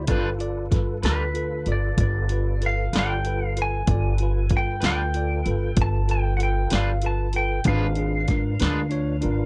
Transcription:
0.07 G1 G3 D4 F4 A4 B4, kick, closed hi-hat
0.11 B4
0.39 F4 A4 D5, closed hi-hat
0.71 G2 F4 A4 B4, kick, snare, closed hi-hat
1.03 D2 G3 D4 F4 A4 B4, snare, closed hi-hat
1.34 F4 A4 B4, closed hi-hat
1.66 G1 F4 A4 D5, closed hi-hat
1.72 D5
1.97 G1 F4 A4 B4 D5, kick, closed hi-hat
2.29 F4 A4 B4, closed hi-hat
2.61 F4 A4 B4, closed hi-hat
2.66 F5
2.93 G1 G3 D4 F4 A4 B4 D5, snare, closed hi-hat
2.99 G5
3.25 F4 A4 B4, closed hi-hat
3.46 F5
3.57 F4 A4 B4, closed hi-hat
3.62 G#5
3.86 G1 F4 A4 B4, kick, closed hi-hat
3.91 D5
4.18 F4 A4, closed hi-hat
4.23 B4
4.50 G2 F4 A4 B4, kick, closed hi-hat
4.57 G5
4.80 D2 G3 D4 F4 A4 B4, snare, closed hi-hat
4.85 B4 G5
5.14 F4 A4 D5, closed hi-hat
5.45 G1 F4 A4 B4, closed hi-hat
5.76 G1 F4 A4 B4, kick, closed hi-hat
5.82 A5
6.08 F4 A4 B4 G5, closed hi-hat
6.37 F4 A4 F#5, closed hi-hat
6.41 B4 G5
6.70 G1 G3 D4 F4 A4 B4 D5, snare, closed hi-hat
6.75 F5
7.02 F4 A4 B4, closed hi-hat
7.06 A5
7.33 F4 A4 B4 G5, closed hi-hat
7.64 G#1 G#3 D4 F4 F5, kick, closed hi-hat
7.68 B4
7.95 D4 F4 G#4, closed hi-hat
8.28 G#2 D4 F4 A#4, kick, snare, closed hi-hat
8.60 D2 G#3 D4 F4 A#4 B4, snare, closed hi-hat
8.89 D4 F4 C#5, closed hi-hat
9.21 G#1 D4 F4 A#4, closed hi-hat

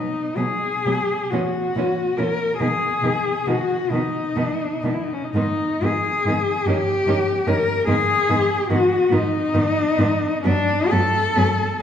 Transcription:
Already playing: D#4
0.37 B2 F#3 B3 G#4
0.86 B2 F#3 B3
1.30 A#2 E3 C#4 F#4
1.76 A#2 E3 C#4
2.17 A#2 E3 C#4 A#4
2.60 B2 D#3 B3 G#4
3.02 B2 D#3 B3
3.46 B2 D#3 B3 F#4
3.91 B2 D#3 B3 D#4
4.36 B2 D#3 B3
4.83 B2 D#3 B3
4.93 E4
5.04 D#4
5.13 C#4
5.24 D#4
5.33 G#2 D#3 B3 D#4
5.81 G#2 D#3 B3 G#4
6.25 G#2 D#3 B3
6.66 G2 D#3 C#4 G4
7.06 G2 D#3 C#4
7.47 G2 D#3 C#4 A#4
7.87 G#2 D#3 B3 G#4
8.29 G#2 D#3 B3
8.70 G#2 D#3 B3 F#4
9.09 G#2 D#3 B3 D#4
9.54 G#2 D#3 B3
9.97 G#2 D#3 B3
10.44 G2 F#3 B3 D4
10.91 G2 F#3 B3 A4
11.35 G2 F#3 B3

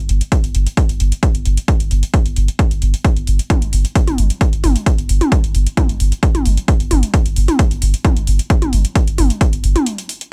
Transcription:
0.09 G1, closed hi-hat
0.21 closed hi-hat
0.32 kick, closed hi-hat
0.44 G1, closed hi-hat
0.55 G1, closed hi-hat
0.67 closed hi-hat
0.77 kick, closed hi-hat
0.89 G1, closed hi-hat
1.00 G1, closed hi-hat
1.12 closed hi-hat
1.23 kick, closed hi-hat
1.35 G1, closed hi-hat
1.45 G1, closed hi-hat
1.57 closed hi-hat
1.68 kick, closed hi-hat
1.80 G1, closed hi-hat
1.91 G1, closed hi-hat
2.03 closed hi-hat
2.14 kick, closed hi-hat
2.26 G1, closed hi-hat
2.36 G1, closed hi-hat
2.48 closed hi-hat
2.59 kick, closed hi-hat
2.71 G1, closed hi-hat
2.82 G1, closed hi-hat
2.94 closed hi-hat
3.05 kick, closed hi-hat
3.16 G1, closed hi-hat
3.27 G1, open hi-hat
3.39 closed hi-hat
3.50 kick, closed hi-hat, mid tom
3.62 G1, closed hi-hat
3.73 G1, open hi-hat
3.85 closed hi-hat
3.95 kick, closed hi-hat
4.07 G1, closed hi-hat, mid tom
4.18 G1, open hi-hat
4.30 closed hi-hat
4.41 kick, closed hi-hat
4.53 G1, closed hi-hat
4.64 G1, open hi-hat, mid tom
4.76 closed hi-hat
4.86 kick, closed hi-hat
4.98 G1, closed hi-hat
5.09 G1, open hi-hat
5.21 closed hi-hat, mid tom
5.32 kick, closed hi-hat
5.44 G1, closed hi-hat
5.55 G1, open hi-hat
5.67 closed hi-hat
5.77 kick, closed hi-hat, mid tom
5.89 G1, closed hi-hat
6.00 G1, open hi-hat
6.12 closed hi-hat
6.23 kick, closed hi-hat
6.35 G1, closed hi-hat, mid tom
6.45 G1, open hi-hat
6.57 closed hi-hat
6.68 kick, closed hi-hat
6.80 G1, closed hi-hat
6.91 G1, open hi-hat, mid tom
7.03 closed hi-hat
7.14 kick, closed hi-hat
7.26 G1, closed hi-hat
7.36 G1, open hi-hat
7.48 closed hi-hat, mid tom
7.59 kick, closed hi-hat
7.71 G1, closed hi-hat
7.82 G1, open hi-hat
7.94 closed hi-hat
8.05 kick, closed hi-hat, mid tom
8.16 G1, closed hi-hat
8.27 G1, open hi-hat
8.39 closed hi-hat
8.50 kick, closed hi-hat
8.62 G1, closed hi-hat, mid tom
8.73 G1, open hi-hat
8.85 closed hi-hat
8.95 kick, closed hi-hat
9.07 G1, closed hi-hat
9.18 G1, open hi-hat, mid tom
9.30 closed hi-hat
9.41 kick, closed hi-hat
9.53 G1, closed hi-hat
9.64 G1, open hi-hat
9.76 closed hi-hat, mid tom
9.86 closed hi-hat
9.98 closed hi-hat
10.09 open hi-hat
10.21 closed hi-hat

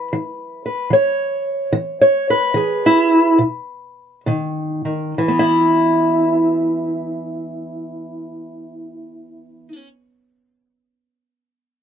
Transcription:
Already playing: E4 B4
0.13 E3
0.66 B4
0.90 E3 C#5
1.72 E3
2.01 C#5
2.30 B4
2.54 E3 G#4
2.86 E4
3.38 B2
4.26 B2 D#3
4.85 D#3
5.18 E3
5.28 B3
5.39 E4

